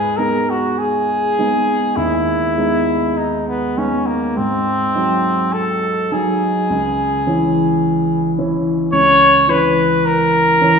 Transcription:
Already playing: G#2 G#4
0.17 G#3 B3 D#4 A#4
0.50 F#4
0.79 G#4
1.39 G#3 B3 D#4
1.96 D#2 E4
2.58 G#3 B3 D#4
3.17 D#4
3.48 B3
3.77 G#3 B3 C#4 D#4
4.06 A#3
4.37 G#2 C4
4.95 F#3 D#4
5.53 A4
6.12 F#3 D#4 G#4
6.70 C#2
7.27 E3 C#4 E4
8.38 E3 C#4 E4
8.93 C#2 C#5
9.48 E3 C#4 E4 B4
10.06 A#4
10.61 E3 C#4 E4

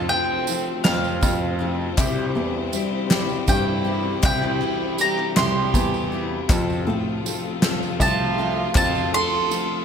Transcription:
Already playing: F1 F2 C3 F3 A3 C4 A4 C5 D5
0.09 F3 A3 C4 F4 A4 C5 G5, ride
0.47 F3 A3 C4 F4 A4 C5, ride, tambourine
0.84 F2 C3 F3 A3 C4 F4 A4 C5 F5, snare, clap, ride, tambourine
1.04 tambourine
1.21 F2 F3 A3 C4 F4 A4 C5, kick, ride, tambourine
1.59 F3 A3 C4 F4 A4 C5, ride
1.97 C2 C3 E3 G3 C4 E4 G4 C5 E5, kick, clap, ride, tambourine
2.34 E2 G3 C4 E4 G4 C5 E5, ride
2.72 G3 C4 E4 G4 C5 E5, ride, tambourine
3.09 C3 G3 C4 E4 G4 C5 E5, snare, clap, ride, tambourine
3.29 tambourine
3.47 G2 G3 C4 E4 G4 C5 E5 G5, kick, ride, tambourine
3.85 G3 C4 E4 G4 C5 E5, ride
4.22 C2 C3 G3 C4 E4 G4 C5 E5 G5, kick, clap, ride, tambourine
4.43 clap
4.60 G3 C4 E4 G4 C5 E5, clap, ride
4.98 G3 C4 E4 G4 C5 E5 A#5, ride, tambourine
5.18 clap
5.36 C2 C3 G3 C4 E4 G4 C5 E5 C6, snare, clap, ride
5.73 E2 G3 C4 E4 G4 C5 E5, kick, clap, ride, tambourine
5.94 tambourine
6.10 G3 C4 E4 G4 C5 E5, ride
6.15 C4
6.48 F1 F2 C3 F3 A3 C4 F4 A4 C5, kick, clap, ride, tambourine
6.70 tambourine
6.85 A2 F3 A3 C4 F4 A4 C5, ride
6.89 F3 C4
7.24 F3 A3 C4 F4 A4 C5, ride, tambourine
7.28 A4
7.61 C3 F3 A3 C4 F4 A4 C5, snare, clap, ride, tambourine
7.65 F2 F3
7.83 tambourine
7.98 C2 F3 A3 C4 F4 A4 C5 A5, kick, ride, tambourine
8.03 F4 A4
8.36 F3 A3 C4 F4 A4 C5, ride
8.41 F3
8.75 F1 F2 C3 F3 A3 C4 F4 A4 C5 A5, kick, clap, ride, tambourine
8.95 tambourine
9.12 F3 A3 C4 F4 A4 C5 C6, ride
9.17 F3
9.50 F3 A3 C4 F4 A4 C5, ride, tambourine

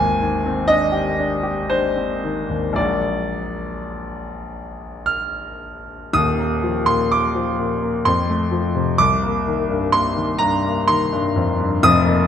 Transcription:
Already playing: G#1 D#2 G#5
0.21 D#3
0.45 C4
0.68 D4 D#5
0.92 G4
1.18 D4
1.43 G4
1.70 D4 C5
1.96 C4
2.24 D#3
2.49 D#2
2.73 A#1 F#3 G#3 A#3 D5
2.77 F#4
5.06 F6
6.13 D#1 D#2 D#6
6.39 A#3
6.63 F3
6.86 A#2 C6
7.12 A#3 D6
7.34 F3
7.59 A#2
7.83 A#3
8.05 F2 C6
8.29 A3
8.51 F3
8.75 C3
8.98 C2 D6
9.23 A#3
9.48 D#3
9.69 G2
9.92 A#3 C6
10.16 D#3
10.38 G2 A#5
10.65 A#3
10.88 D#3 C6
11.13 G2
11.36 F2
11.60 G2
11.83 F1 F2 D#6
12.05 A#3

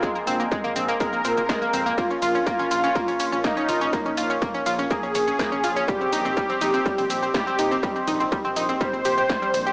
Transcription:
Already playing: F4 A#4 D#5 G#5 C6
0.03 G#3 A#3 C4 G#4, kick, shaker
0.15 A#3 A#4, shaker
0.27 A#1 C4 C5, mid tom, open hi-hat, shaker
0.40 A#3 A#4, shaker
0.52 G#3 G#4, kick, shaker
0.64 A#3 A#4, mid tom, shaker
0.76 A#1 G#3 A#3 C4 C5, open hi-hat, shaker
0.89 A#3 A#4, shaker
1.00 G#3 A#3 C4 G#4 A#4, kick, mid tom, open hi-hat, swell, shaker
1.13 A#1 A#3 A#4, shaker
1.25 A#2 C4 C5, open hi-hat, shaker
1.37 A#3 A#4, mid tom, shaker
1.49 G#3 G#4, kick, snare, shaker
1.62 A#3 A#4, shaker
1.73 F2 C4 C5, mid tom, open hi-hat, shaker
1.86 A#3 A#4, shaker
1.98 F3 A#3 C#4 F4 A#4 C#5 F5 C#6, kick, ride, shaker
2.10 C#4 C#5, shaker
2.22 A#1 F4 F5, mid tom, open hi-hat, ride, shaker
2.35 C#4 C#5, shaker
2.47 A#3 A#4, kick, ride, shaker
2.59 C#4 C#5, mid tom, shaker
2.71 A#1 F3 A#3 C#4 F4 F5, open hi-hat, ride, shaker
2.84 C#4 C#5, shaker
2.95 A#3 A#4, kick, mid tom, ride, shaker
3.08 A#1 C#4 C#5, open hi-hat, shaker
3.20 A#1 C#4 C#5, open hi-hat, ride, shaker
3.32 C#4 C#5, mid tom, shaker
3.44 A#3 D#4 A#4, kick, snare, ride, shaker
3.57 C#4 C#5, shaker
3.69 A#1 F4 F5, mid tom, open hi-hat, ride, shaker
3.81 C#4 C#5, shaker
3.93 F3 A#3 C#4 A#4 G5, kick, ride, shaker
4.06 C#4 C#5, mid tom, shaker
4.17 A#1 F4 F5, open hi-hat, ride, shaker
4.30 C#4 C#5, shaker
4.42 A#3 A#4, kick, mid tom, ride, shaker
4.54 C#4 C#5, shaker
4.66 A#1 F3 A#3 C#4 F4 F5, open hi-hat, ride, shaker
4.79 C#4 C#5, mid tom, shaker
4.91 F3 A#3 C#4 G#4 A#4, kick, ride, shaker
5.03 A#1 C#4 C#5, shaker
5.15 A#1 C#4 C#5, mid tom, open hi-hat, ride, shaker
5.28 C#4 C#5, shaker
5.39 A#3 A#4, kick, snare, ride, shaker
5.52 C#4 C#5, mid tom, shaker
5.64 A#1 F4 F5, open hi-hat, ride, shaker
5.76 C#4 C#5, shaker
5.88 D#3 G3 C4 G4 C5 D#5 C6, kick, mid tom, ride, shaker
6.01 C4 C5, shaker
6.12 A#1 D#4 D#5, open hi-hat, ride, shaker
6.25 C4 C5, mid tom, shaker
6.37 G3 G4, kick, ride, shaker
6.50 C4 C5, shaker
6.61 A#1 D#3 G3 C4 D#4 D#5, mid tom, open hi-hat, ride, shaker
6.74 C4 C5, shaker
6.86 G3 G4, kick, ride, shaker
6.98 A#1 C4 C5, mid tom, open hi-hat, shaker
7.10 A#1 C4 C5, open hi-hat, ride, shaker
7.23 C4 C5, shaker
7.34 G3 G4, kick, snare, mid tom, ride, shaker
7.47 C4 C5, shaker
7.59 A#1 D#4 D#5, open hi-hat, ride, shaker
7.71 C4 C5, mid tom, shaker
7.83 D#3 G3 C4 G4, kick, ride, shaker
7.96 C4 C5, shaker
8.08 A#1 D#4 D#5, mid tom, open hi-hat, ride, shaker
8.20 C4 C5, shaker
8.32 G3 G4, kick, ride, shaker
8.45 C4 C5, mid tom, shaker
8.56 A#1 D#3 G3 C4 D#4 D#5, open hi-hat, ride, shaker
8.69 C4 C5, shaker
8.81 D#3 G3 C4 G4 C5, kick, mid tom, ride, shaker
8.93 A#1 C4 C5, shaker
9.05 A#1 G4 G5, open hi-hat, ride, shaker
9.18 G4 G5, mid tom, shaker
9.30 G3 G4, kick, snare, ride, shaker
9.42 G3 G4, shaker
9.54 A#1 C5 C6, mid tom, open hi-hat, ride, shaker
9.67 G4 G5, shaker

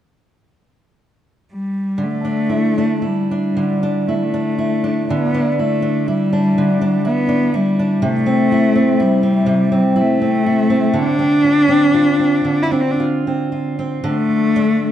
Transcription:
1.52 G3
1.98 D3
2.03 A3
2.25 D4
2.49 E4
2.78 D4
3.02 E4
3.06 G3
3.31 D4
3.57 D3
3.83 D4
4.08 A3 E4
4.15 G3
4.23 A3
4.34 D4
4.59 E4
4.84 D4
5.10 D3 B3
5.34 D4
5.52 B3
5.59 A3 E4
5.82 D4
6.07 G3 E4
6.33 D4
6.58 D3
6.81 D4
7.05 B3 E4
7.29 D4
7.54 G3 E4
7.79 D4
8.02 C3 A3
8.26 C4
8.52 E4
8.76 C4
9.00 G3 E4
9.23 C4
9.46 C3
9.72 C4
9.96 E4
10.01 A3
10.22 C4
10.46 E4
10.70 C4
10.94 D3
10.99 D4
11.19 C4
11.44 F4
11.69 C4
11.94 F4
12.19 C4
12.45 D3
12.63 E4
12.71 C4 D4
12.81 C4
12.91 D4
13.00 F4
13.27 C4
13.52 F4
13.79 C4
14.04 D3
14.08 A3
14.56 D4

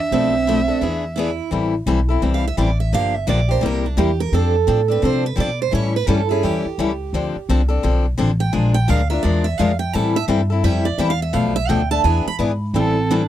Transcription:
Already playing: D4
0.00 E5
0.11 B1 B2 F3 A3 C4 D4 A4
0.47 B2 F3 A3 D4 A4
0.68 A3 D4 A4
0.81 E2 E3 B3 D4 G#4
1.16 E3 B3 D4 E4 G#4
1.51 A1 E3 G3 C4 E4 A4
1.86 B1 E3 G3 C4 E4 A4
2.09 C4 E4 A4
2.22 C2 E3 G3 C4 E4 A4
2.34 F5
2.48 E5
2.57 A1 E3 G3 C4 E4 A4 D5
2.80 E5
2.92 G1 D3 F3 A#3 D4 G4 F5
3.15 E5
3.27 A#1 D3 F3 A#3 D4 G4 D5
3.49 A#3 D4 G4 C5
3.61 C2 C3 G3 A#3 E4 G4
3.66 A#4
3.86 D4
3.97 E2 C3 G3 A#3 E4 G4
4.20 A#4
4.32 F2 F3 C4 D4 A4
4.67 A2 F3 C4 D4 A4
4.88 C4 D4 A4 B4
5.02 C3 F3 C4 D4 A4 C5
5.26 B4
5.36 B2 F3 C4 D4 A4
5.40 D5
5.62 C5
5.71 A2 E3 G3 C#4 E4 A4 C#5
5.96 B4
6.07 G2 E3 G3 C#4 E4 A4
6.29 C#4 E4 G#4 A4
6.43 E2 E3 G3 C#4 E4 G4 A4
6.65 muted upright bass stroke
6.78 C#2 E3 G3 C#4 E4 A4
7.13 D2 D3 F3 C4 D4 A4
7.36 muted upright bass stroke
7.49 C2 D3 F3 C4 D4 A4
7.68 C4 D4 A4
7.83 B1 D3 F3 C4 D4 A4
8.18 A1 D3 F3 C4 D4 A4
8.40 G5
8.53 A#1 F3 G#3 D4 F4 A#4 G#5
8.74 G5
8.88 D2 F3 G#3 D4 F4 A#4 F5
9.10 D4 F4 A#4 E5
9.23 E2 F3 G#3 D4 F4 A#4 D5
9.44 E5
9.58 F2 F3 G#3 D4 F4 A#4 F5
9.79 G5
9.93 A2 E3 G3 C4 E4 A4 A5
10.16 E5
10.28 G2 E3 G3 C4 E4 A4
10.50 C4 E4 A4
10.64 F2 E3 G3 C4 E4 A4 E5
10.85 D5
10.98 E2 E3 G3 C4 E4 A4 E5
11.10 F5
11.22 E5
11.33 B1 B2 F3 A3 D4 A4 F5
11.56 E5
11.69 D2 B2 F3 A3 D4 A4 G5
11.91 A3 D4 A4 A5
12.04 E2 E3 B3 D4 G#4 G#5
12.26 B5, muted upright bass stroke
12.39 G#2 E3 B3 D4 G#4
12.74 A1 E3 G3 C4 E4 A4
12.79 A4
13.11 E3 G3 C4 D4 E4 A4

